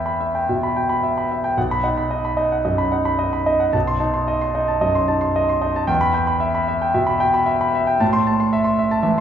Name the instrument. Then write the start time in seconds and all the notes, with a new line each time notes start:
grand piano
Already playing: E2 E5 G5 B5
0.06 B5
0.20 E5
0.35 G5
0.49 B2 E5
0.63 B5
0.76 G5
0.89 B5
1.03 E5
1.18 B5
1.31 E5
1.44 G5
1.57 B1 F#5
1.71 B5
1.83 D#4 F#5
1.97 B5
2.11 D#5
2.25 B5
2.37 D#4 D#5
2.52 F#5
2.65 F#2 D#5
2.78 B5
2.92 D#4 F#5
3.05 B5
3.19 D#5
3.33 B5
3.46 D#4 D#5
3.60 F#5
3.73 B1 A5
3.87 C6
4.00 D#4 A5
4.14 C6
4.28 D#5
4.41 C6
4.54 D#4 D#5
4.68 A5
4.81 F#2 D#5
4.95 C6
5.08 D#4 A5
5.21 C6
5.36 D#5
5.49 C6
5.62 D#4 D#5
5.76 A5
5.87 E2 G5
6.01 B5
6.14 G5
6.27 B5
6.40 E5
6.55 B5
6.68 E5
6.82 G5
6.94 B2 E5
7.07 B5
7.20 G5
7.34 B5
7.46 E5
7.61 B5
7.75 E5
7.87 G5
8.00 A2 A5
8.13 C6
8.27 A5
8.40 C6
8.53 E5
8.64 C6
8.79 E5
8.91 A5
9.03 E3 E5